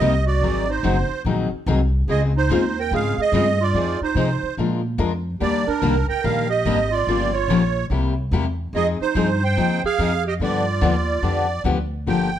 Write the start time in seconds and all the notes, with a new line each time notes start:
Already playing: G4 D#5
0.00 C2 C3 G3 A#3 D#4 G4
0.26 F#4 D5
0.41 G#1 D#3 F#3 C4 D#4 G#4
0.68 D#4 C5
0.83 F#1 D#3 F#3 C4 D#4 G#4
1.09 muted upright bass stroke
1.25 A#1 D#3 F#3 C4 D#4 G#4
1.51 muted upright bass stroke
1.66 C2 D#3 F#3 C4 D#4 G#4
2.08 C#2 C#3 G#3 C4 F4 G#4 D#5
2.37 D#4 C5
2.50 D#2 C#3 G#3 C4 F4 G#4
2.80 A#4 G5
2.91 G#2 C#3 G#3 C4 F4 G#4 F5
3.17 G#4, muted upright bass stroke
3.22 D#5
3.32 G2 C#3 G#3 C4 F4 G#4
3.61 F4 D5
3.74 F2 F3 C4 D#4 G#4
4.01 D#4 C5, muted upright bass stroke
4.15 C3 F3 C4 D#4 G#4
4.43 muted upright bass stroke
4.57 A#2 F3 G#3 D4 F4 A#4
4.98 F2 F3 G#3 D4 F4 A#4
5.40 D#2 D#3 G3 A#3 D4 G4 D5
5.67 D4 A#4, muted upright bass stroke
5.82 C2 D#3 G3 A#3 D4 G4
6.08 A#4 G5, muted upright bass stroke
6.22 A#1 D#3 G3 A#3 D4 G4 A#4 F5
6.49 G4 D#5
6.65 G#1 D#3 G3 A#3 D4 G4
6.91 F4 D5
7.07 G1 C#3 F3 A#3 F4 G4
7.33 F4 C#5
7.48 A#1 C#3 F3 A#3 F4 G4
7.90 C2 C3 G3 A#3 E4 G4
8.31 E2 C3 G3 A#3 E4 G4
8.73 F2 F3 C4 D#4 G#4 D#5
9.00 D#4 C5, muted upright bass stroke
9.15 G2 F3 C4 D#4 G#4
9.44 C5 G5
9.57 D#2 F3 C4 D#4 G#4
9.83 G#4 F5, muted upright bass stroke
9.99 F2 F3 C4 D#4 G#4
10.28 G4 D#5
10.40 G2 D3 F3 B3 D4 F4 G4 D5
10.81 D#2 D3 F3 B3 D4 G4
11.22 F2 D3 F3 B3 D4 G4
11.64 D2 D3 F3 B3 D4 G4
12.06 G1 D3 F3 A#3 D4 G4 G5